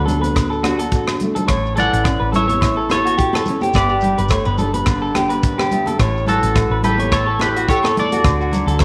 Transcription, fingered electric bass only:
Already playing: D2
1.48 A1
1.93 A1
2.21 A1
3.75 G1
4.18 G1
4.46 G1
5.99 A1
6.43 A1
6.70 A1
8.24 D2
8.66 D2

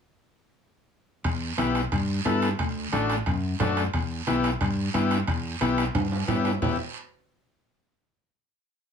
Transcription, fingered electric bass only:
1.25 E2
1.58 B1
1.92 G2
2.26 G2
2.59 D2
2.93 A1
3.27 F#2
3.60 F#2
3.94 E2
4.27 B1
4.61 G2
4.95 G2
5.28 E2
5.61 B1
5.95 G2
6.28 G2
6.62 E2

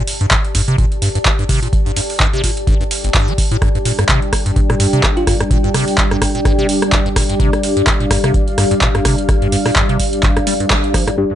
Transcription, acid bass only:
0.21 G2
0.31 G2
0.55 G2
0.68 C3
0.78 A#2
1.02 G2
1.15 G2
1.39 G2
1.49 C3
1.63 A#2
1.86 G2
1.97 G2
2.20 G2
2.33 C3
2.44 A#2
2.67 G2
2.81 G2
3.04 G1
3.15 G2
3.28 G3
3.51 A2
3.62 G2
3.75 G2
3.85 A#2
3.99 G2
4.09 C3
4.46 G2
4.56 G2
4.70 A#2
4.80 G2
4.93 C3
5.27 G2
5.41 G2
5.51 A#2
5.64 G2
5.74 C3
6.11 G2
6.22 G2
6.35 A#2
6.45 G2
6.59 C3
6.93 G2
7.06 G2
7.16 A#2
7.30 G2
7.40 C3
7.77 G2
7.87 G2
8.00 A#2
8.11 G2
8.24 C3
8.58 G2
8.71 G2
8.81 A#2
8.95 G2
9.05 C3
9.42 G2
9.52 G2
9.66 A#2
9.76 G2
9.89 C3
10.23 G2
10.37 G2
10.47 G3
10.60 G2
10.70 G3
10.94 F3
11.07 A2
11.18 G2
11.31 G2

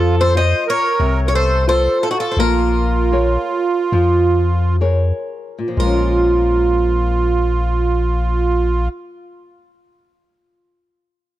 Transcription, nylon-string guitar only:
Already playing: F3
0.35 F4
1.00 C3
1.67 F4 A4 C5
2.38 A#3
3.12 G#4 A#4 C#5
3.93 F3
4.81 G#4 A#4 C#5
5.58 A#2
5.68 F3
5.77 G#3
5.86 C#4
5.95 F4

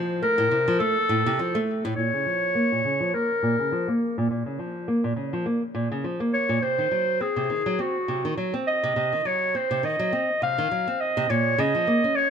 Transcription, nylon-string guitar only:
Already playing: F3
0.22 A3
0.38 A2
0.51 C3
0.68 F3
0.80 A3
1.09 A2
1.26 C3
1.39 F3
1.55 A3
1.85 A2
1.97 A#2
2.13 C#3
2.26 F3
2.55 A#3
2.72 A#2
2.85 C#3
3.00 F3
3.14 A#3
3.43 A#2
3.59 C#3
3.72 F3
3.88 A#3
4.18 A#2
4.31 A#2
4.46 C#3
4.59 F3
4.88 A#3
5.04 A#2
5.16 C#3
5.33 F3
5.46 A#3
5.75 A#2
5.92 C#3
6.04 F3
6.20 A#3
6.49 A#2
6.62 C3
6.78 D#3
6.91 F#3
7.21 C4
7.36 C3
7.50 D#3
7.66 F#3
7.79 C4
8.08 C3
8.25 D#3
8.37 F#3
8.54 C4
8.83 C3
8.96 C3
9.13 D#3
9.25 F#3
9.55 C4
9.71 C3
9.83 D#3
9.99 F#3
10.13 C4
10.42 C3
10.58 D#3
10.71 F#3
10.87 C4
11.17 C3
11.30 A#2
11.58 C#3
11.75 F3
11.87 A#3
12.04 C#4

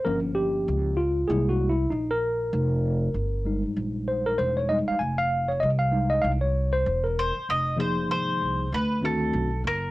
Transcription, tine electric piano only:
0.05 F3 A#3 C#4 A#4
0.35 G4
0.97 F4
1.28 G#3 A#3 E4 G#4
1.49 F#4
1.69 E4
1.91 D#4
2.11 A#4
3.45 G3 G#3 D#4
4.08 C5
4.26 A#4
4.38 C5
4.57 C#5
4.69 G3 G#3 D#4 D#5
4.88 F5
4.99 G#5
5.18 F5
5.48 C#5
5.60 D#5
5.79 F5
5.92 G3 G#3 D#4
6.10 D#5
6.22 F5
6.41 C#5
6.73 C5
7.04 A#4
7.76 C3 F3 A#3 D#4 G#4
9.00 D#3 A3 C4 D4 F#4

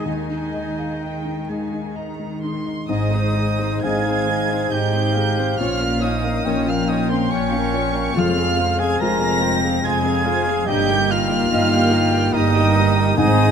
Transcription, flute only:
2.90 D#5
3.83 G#5
4.73 G5
5.59 F5
6.03 D#5
6.69 F5
6.90 D#5
7.10 C5
7.32 C#5
8.16 F5
8.79 G#5
9.01 A#5
9.85 G#5
10.68 G5
11.11 F5
12.35 D#5
13.19 D#5

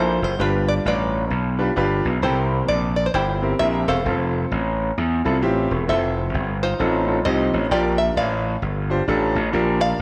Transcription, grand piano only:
Already playing: E4 F4 A4 C5
0.39 G2 D4 F4 G4 B4
1.59 D4 F4 G4 B4
1.76 D4 F4 G4 B4 F5
2.23 C3 C4 E4 G4 A4
2.29 A#4
3.42 C4 E4 G4 A#4
3.59 C4 E4 G4 A#4
4.05 C4 F4 A4
5.25 C4 E4 F4 A4
5.42 C4 E4 F4 G4
5.87 C4 E4 F4 A4
6.79 A2 C4 D#4 F4 A4
7.07 C4 D#4 F4 A4
7.25 C4 D#4 F4 G4
7.71 A#2 D4 F4 G4 A#4
8.90 D4 F4 G4 C5
9.08 D4 F4 G4 A4
9.53 A#2 D4 F4 G4 A#4

